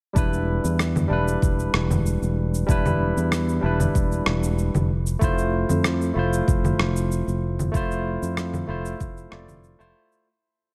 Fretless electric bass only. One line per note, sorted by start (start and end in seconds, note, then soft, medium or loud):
0.16 0.58 E1 medium
0.64 1.05 E2 medium
1.11 1.35 E1 medium
1.42 1.66 E1 medium
1.74 2.15 E1 medium
2.22 2.63 E1 medium
2.69 3.10 E1 medium
3.16 3.57 E2 medium
3.63 3.87 E1 medium
3.95 4.19 E1 medium
4.26 4.68 E1 medium
4.75 5.15 F1 medium
5.21 5.63 F1 loud
5.69 6.10 F2 medium
6.16 6.40 F1 medium
6.48 6.72 F1 medium
6.79 7.21 F1 medium
7.27 7.68 F1 medium
7.74 8.16 F1 loud
8.22 8.63 F2 medium
8.68 8.93 F1 medium
9.00 9.25 F1 medium
9.32 9.74 F1 loud
9.80 9.91 F1 medium